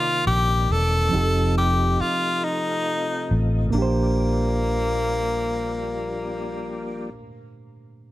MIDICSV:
0, 0, Header, 1, 6, 480
1, 0, Start_track
1, 0, Key_signature, -2, "major"
1, 0, Tempo, 869565
1, 618, Time_signature, 6, 3, 24, 8
1, 4481, End_track
2, 0, Start_track
2, 0, Title_t, "Tenor saxophone"
2, 0, Program_c, 0, 66
2, 0, Note_on_c, 0, 65, 102
2, 143, Note_off_c, 0, 65, 0
2, 149, Note_on_c, 0, 67, 105
2, 395, Note_on_c, 0, 69, 110
2, 404, Note_off_c, 0, 67, 0
2, 867, Note_off_c, 0, 69, 0
2, 872, Note_on_c, 0, 67, 93
2, 1107, Note_on_c, 0, 65, 93
2, 1115, Note_off_c, 0, 67, 0
2, 1345, Note_on_c, 0, 63, 82
2, 1353, Note_off_c, 0, 65, 0
2, 1882, Note_off_c, 0, 63, 0
2, 2058, Note_on_c, 0, 58, 94
2, 3918, Note_off_c, 0, 58, 0
2, 4481, End_track
3, 0, Start_track
3, 0, Title_t, "Reed electric piano"
3, 0, Program_c, 1, 4
3, 0, Control_c, 1, 64, 127
3, 0, Note_on_c, 1, 48, 75
3, 0, Note_on_c, 1, 51, 74
3, 0, Note_on_c, 1, 58, 78
3, 0, Note_on_c, 1, 60, 72
3, 0, Note_on_c, 1, 74, 75
3, 589, Note_off_c, 1, 48, 0
3, 595, Note_off_c, 1, 60, 0
3, 599, Note_off_c, 1, 74, 0
3, 602, Note_on_c, 1, 53, 64
3, 604, Note_off_c, 1, 51, 0
3, 610, Note_off_c, 1, 58, 0
3, 613, Note_on_c, 1, 60, 61
3, 623, Note_on_c, 1, 63, 62
3, 626, Control_c, 1, 64, 0
3, 631, Note_on_c, 1, 67, 63
3, 644, Note_on_c, 1, 69, 63
3, 727, Control_c, 1, 64, 127
3, 2022, Note_on_c, 1, 46, 72
3, 2028, Note_off_c, 1, 53, 0
3, 2033, Note_off_c, 1, 60, 0
3, 2039, Note_off_c, 1, 63, 0
3, 2043, Note_off_c, 1, 67, 0
3, 2045, Note_on_c, 1, 58, 68
3, 2049, Note_off_c, 1, 69, 0
3, 2065, Note_on_c, 1, 62, 67
3, 2066, Control_c, 1, 64, 0
3, 2087, Note_on_c, 1, 67, 71
3, 2109, Note_on_c, 1, 72, 88
3, 2157, Control_c, 1, 64, 127
3, 3931, Note_off_c, 1, 46, 0
3, 3953, Note_off_c, 1, 58, 0
3, 3973, Note_off_c, 1, 62, 0
3, 3996, Note_off_c, 1, 67, 0
3, 4017, Note_off_c, 1, 72, 0
3, 4481, End_track
4, 0, Start_track
4, 0, Title_t, "Tonewheel organ"
4, 0, Program_c, 2, 16
4, 0, Note_on_c, 2, 48, 61
4, 0, Note_on_c, 2, 51, 62
4, 0, Note_on_c, 2, 58, 60
4, 0, Note_on_c, 2, 74, 70
4, 601, Note_off_c, 2, 58, 0
4, 602, Note_off_c, 2, 51, 0
4, 604, Note_off_c, 2, 74, 0
4, 618, Note_on_c, 2, 63, 73
4, 619, Note_on_c, 2, 53, 64
4, 620, Note_on_c, 2, 57, 66
4, 2034, Note_off_c, 2, 48, 0
4, 2044, Note_off_c, 2, 53, 0
4, 2044, Note_off_c, 2, 63, 0
4, 2045, Note_off_c, 2, 57, 0
4, 2055, Note_on_c, 2, 55, 59
4, 2058, Note_on_c, 2, 46, 65
4, 2059, Note_on_c, 2, 53, 61
4, 2059, Note_on_c, 2, 62, 72
4, 3916, Note_off_c, 2, 55, 0
4, 3917, Note_off_c, 2, 46, 0
4, 3918, Note_off_c, 2, 53, 0
4, 3918, Note_off_c, 2, 62, 0
4, 4481, End_track
5, 0, Start_track
5, 0, Title_t, "Fingered electric bass"
5, 0, Program_c, 3, 33
5, 147, Note_on_c, 3, 34, 95
5, 360, Note_off_c, 3, 34, 0
5, 386, Note_on_c, 3, 28, 85
5, 600, Note_off_c, 3, 28, 0
5, 628, Note_on_c, 3, 29, 109
5, 1081, Note_off_c, 3, 29, 0
5, 1825, Note_on_c, 3, 33, 77
5, 2040, Note_off_c, 3, 33, 0
5, 2060, Note_on_c, 3, 34, 84
5, 3969, Note_off_c, 3, 34, 0
5, 4481, End_track
6, 0, Start_track
6, 0, Title_t, "Muted fingered electric bass strokes"
6, 1107, Note_on_c, 9, 29, 50
6, 1162, Note_off_c, 9, 29, 0
6, 4481, End_track
0, 0, End_of_file